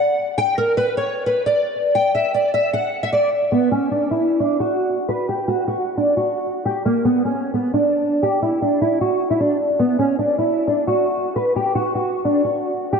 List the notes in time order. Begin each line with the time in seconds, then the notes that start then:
Already playing: F#5
0.38 G5
0.58 A#4
0.77 B4
0.97 C#5
1.26 B4
1.46 D5
1.95 G5
2.15 E5
2.34 D5
2.54 E5
2.73 F#5
3.03 E5
3.13 D5
3.52 B3
3.71 C#4
3.91 D4
4.11 E4
4.40 D4
4.60 F#4
5.08 B4
5.29 G4
5.48 F#4
5.68 F#4
5.97 D4
6.17 F#4
6.65 G4
6.85 A#3
7.05 B3
7.25 C#4
7.54 B3
7.74 D4
8.23 G4
8.42 E4
8.62 D4
8.81 E4
9.01 F#4
9.30 E4
9.40 D4
9.79 B3
9.99 C#4
10.19 D4
10.38 E4
10.67 D4
10.87 F#4
11.36 B4
11.56 G4
11.75 F#4
11.95 F#4
12.25 D4
12.44 F#4
12.93 G4